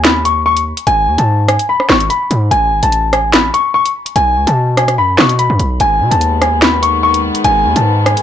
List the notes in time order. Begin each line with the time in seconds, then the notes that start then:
Already playing: D#2
0.05 B5, snare, clap, closed hi-hat
0.25 C#6, closed hi-hat
0.46 C#6
0.57 closed hi-hat
0.77 closed hi-hat
0.87 G#1 G#5, closed hi-hat
1.07 D#2
1.18 G#2 A5, closed hi-hat
1.48 G#5, cross-stick, closed hi-hat
1.59 closed hi-hat
1.69 B5
1.80 cross-stick
1.89 G#1 C#6, cross-stick, snare, clap
2.00 closed hi-hat
2.10 B5, closed hi-hat
2.31 G#2, closed hi-hat
2.51 A1 G#5, closed hi-hat
2.72 G#1
2.83 A1 A5, closed hi-hat
2.92 closed hi-hat
3.13 G#5, cross-stick, closed hi-hat
3.33 B5, snare, clap, closed hi-hat
3.54 C#6, closed hi-hat
3.74 C#6
3.86 closed hi-hat
4.06 closed hi-hat
4.16 B1 G#5, closed hi-hat
4.36 C#2
4.47 B2 A5, closed hi-hat
4.77 G#5, cross-stick, closed hi-hat
4.88 cross-stick, closed hi-hat
4.98 F#2 B5
5.18 B2 C#6, cross-stick, snare, clap
5.29 closed hi-hat
5.39 B5, closed hi-hat
5.50 F#2
5.59 B1, closed hi-hat
5.80 G#1 D#3 G#3 B3 G#5, closed hi-hat
6.01 B2
6.11 D#2 A5, closed hi-hat
6.21 closed hi-hat
6.42 G#5, cross-stick, closed hi-hat
6.62 B5, snare, clap, closed hi-hat
6.83 C#6, closed hi-hat
7.03 C#6
7.14 closed hi-hat
7.35 closed hi-hat
7.44 G#1 G#5, closed hi-hat
7.65 D#2
7.76 G#2 A5, closed hi-hat
8.06 G#5, cross-stick, closed hi-hat
8.17 closed hi-hat